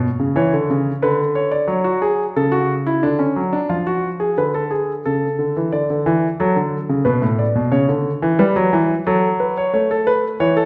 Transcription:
0.00 0.35 C#5 medium
0.20 0.36 C#3 medium
0.36 0.52 E3 medium
0.36 1.01 C#5 medium
0.53 0.69 D3 medium
0.70 0.90 C#3 medium
1.02 1.67 D3 medium
1.02 1.23 B4 medium
1.35 1.52 C#5 medium
1.51 1.68 D5 medium
1.67 2.33 F#3 medium
1.67 1.84 C#5 medium
1.84 2.01 F#4 medium
2.02 2.23 G#4 medium
2.36 3.00 C#3 medium
2.36 2.52 A4 medium
2.52 2.72 F#4 medium
2.87 3.02 E4 medium
3.03 3.23 D3 medium
3.03 3.19 D4 medium
3.19 3.40 C#4 medium
3.36 3.57 F#3 medium
3.53 3.69 D4 medium
3.69 4.35 F3 medium
3.69 3.86 F4 medium
3.87 4.07 F#4 medium
4.20 4.36 G#4 medium
4.37 5.02 D3 medium
4.37 4.54 B4 medium
4.54 4.70 A4 medium
4.71 4.91 G#4 medium
5.06 5.26 C#3 medium
5.06 5.70 A4 medium
5.39 5.55 D3 medium
5.57 5.72 E3 medium
5.72 5.88 D3 medium
5.72 6.37 D5 medium
5.90 6.06 D3 medium
6.06 6.27 E3 medium
6.40 6.56 F#3 medium
6.40 7.04 A4 medium
6.56 6.77 D3 medium
6.89 7.05 C#3 medium
7.05 7.22 B2 medium
7.05 7.26 B4 medium
7.22 7.43 A2 medium
7.39 7.60 D5 medium
7.55 7.72 B2 medium
7.72 7.88 C#3 medium
7.72 8.37 C#5 medium
7.89 8.09 D3 medium
8.22 8.39 E3 medium
8.39 8.55 G3 medium
8.39 9.04 B4 medium
8.56 8.72 F#3 medium
8.73 8.93 E3 medium
9.06 9.71 F#3 medium
9.06 9.27 A4 medium
9.40 9.56 B4 medium
9.57 9.72 C#5 medium
9.73 10.37 A3 medium
9.73 9.89 C#5 medium
9.91 10.06 A4 medium
10.07 10.27 B4 medium
10.40 10.65 E3 medium
10.40 10.56 C#5 medium
10.57 10.65 A4 medium

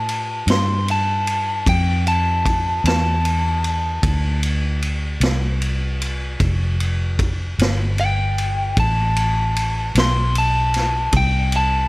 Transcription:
0.00 0.44 A2 medium
0.00 0.46 A5 medium
0.09 ride medium
0.47 1.62 G2 medium
0.47 0.88 C6 medium
0.47 snare loud
0.47 ride medium
0.88 1.66 A5 medium
0.88 ride medium
1.27 ride medium
1.66 2.81 F2 medium
1.66 2.06 G5 medium
1.66 kick medium
1.66 ride medium
2.07 2.83 A5 medium
2.07 ride medium
2.46 kick medium
2.46 ride medium
2.84 3.99 E2 medium
2.84 4.40 A5 loud
2.84 snare loud
2.84 ride medium
3.25 ride medium
3.64 ride medium
4.03 5.18 D2 medium
4.03 kick loud
4.03 ride medium
4.43 ride medium
4.82 ride medium
5.20 6.36 C2 medium
5.20 snare loud
5.20 ride medium
5.62 ride medium
6.02 ride medium
6.40 7.55 F1 medium
6.40 kick medium
6.40 ride medium
6.80 ride medium
7.19 kick medium
7.19 ride medium
7.59 8.73 G1 medium
7.59 snare loud
7.59 ride medium
7.98 8.76 G5 loud
7.98 ride medium
8.38 ride medium
8.77 9.92 A1 medium
8.77 9.93 A5 medium
8.77 kick loud
8.77 ride medium
9.16 ride medium
9.56 ride medium
9.95 11.10 B1 medium
9.95 snare loud
9.95 ride medium
10.00 10.36 C6 loud
10.35 11.13 A5 medium
10.35 ride medium
10.74 snare soft
10.74 ride medium
11.12 11.88 C2 medium
11.12 kick medium
11.12 ride medium
11.17 11.53 G5 medium
11.52 ride medium
11.56 11.88 A5 medium

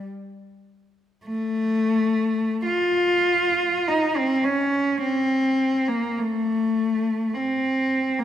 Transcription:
1.24 2.61 A3 loud
2.65 3.86 F4 medium
3.88 4.16 D#4 medium
4.16 4.45 C4 medium
4.44 5.02 C#4 medium
5.01 5.88 C4 medium
5.88 6.18 A#3 medium
6.19 7.35 A3 medium
7.34 8.21 C4 medium
8.19 8.24 A#3 medium

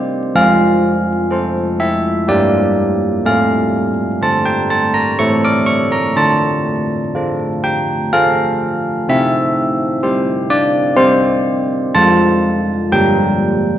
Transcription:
0.00 0.32 G4 soft
0.00 0.32 C5 medium
0.35 1.28 F3 medium
0.35 1.74 F5 medium
1.31 2.23 A4 soft
1.31 2.23 C5 soft
1.80 2.25 E5 medium
2.28 3.22 G3 medium
2.28 3.21 G4 soft
2.28 3.21 A#4 soft
2.28 3.21 D5 medium
3.26 4.19 A3 soft
3.26 4.19 F5 medium
4.21 5.15 D4 soft
4.21 5.16 A4 soft
4.21 4.46 A5 medium
4.45 4.70 G5 medium
4.70 4.95 A5 medium
4.94 5.19 A#5 medium
5.19 6.15 A3 soft
5.19 6.14 E4 soft
5.19 6.14 A4 soft
5.19 5.44 C#6 medium
5.45 5.69 D6 medium
5.66 5.92 C#6 medium
5.92 6.17 A#5 medium
6.16 7.12 D4 soft
6.16 7.60 A5 medium
7.15 8.08 F4 soft
7.15 8.08 A4 soft
7.64 8.10 G5 medium
8.13 9.04 F4 soft
8.13 9.04 A4 soft
8.13 9.04 F5 medium
9.09 10.00 C4 medium
9.09 10.47 E5 medium
10.03 10.93 G4 soft
10.03 10.93 C5 soft
10.50 10.96 D5 medium
10.96 11.91 G4 soft
10.96 11.91 C5 loud
11.95 12.89 F3 medium
11.95 12.88 F4 soft
11.95 12.88 C5 soft
11.95 12.88 A5 medium
12.92 13.79 G3 soft
12.92 13.79 D4 soft
12.92 13.79 A#4 soft
12.92 13.79 G5 medium

